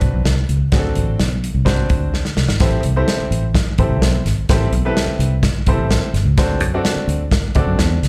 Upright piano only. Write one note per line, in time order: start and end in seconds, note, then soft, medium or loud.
0.00 0.32 C4 medium
0.00 0.33 D4 medium
0.00 0.33 F#4 medium
0.00 0.33 B4 medium
0.72 1.27 C4 medium
0.72 1.27 D4 medium
0.72 1.27 F#4 medium
0.72 0.78 G#4 medium
0.78 1.30 A4 medium
1.65 2.20 C4 medium
1.65 2.20 D4 medium
1.65 2.21 F#4 medium
1.65 2.21 C5 medium
2.61 2.81 C4 medium
2.61 2.82 E4 medium
2.61 2.81 G4 medium
2.61 2.81 A4 medium
2.61 2.81 C5 medium
2.96 3.44 C4 medium
2.96 3.44 E4 medium
2.96 3.44 G4 medium
2.96 3.44 A4 medium
2.96 3.44 C5 medium
3.79 4.20 C4 medium
3.79 4.20 E4 medium
3.79 4.20 G4 medium
3.79 4.20 A4 medium
3.79 4.20 C5 medium
4.50 4.70 C4 medium
4.50 4.70 E4 medium
4.50 4.70 G4 medium
4.50 4.70 A4 medium
4.50 4.70 C5 medium
4.85 5.33 C4 medium
4.85 5.33 E4 medium
4.85 5.33 G4 medium
4.85 5.33 A4 medium
4.85 5.33 B4 medium
5.67 6.08 C4 medium
5.67 6.08 E4 medium
5.67 6.09 G4 medium
5.67 6.09 A4 medium
5.67 6.09 C5 medium
6.38 6.58 C4 medium
6.38 6.59 D4 medium
6.38 6.59 F#4 medium
6.38 6.59 A4 medium
6.38 6.59 C5 medium
6.74 7.22 C4 medium
6.74 7.22 D4 medium
6.74 7.22 F#4 medium
6.74 7.22 A4 medium
6.74 7.22 D5 medium
7.55 7.97 C4 medium
7.55 7.97 D4 medium
7.55 7.97 F#4 medium
7.55 7.97 A4 medium
7.55 7.97 D5 loud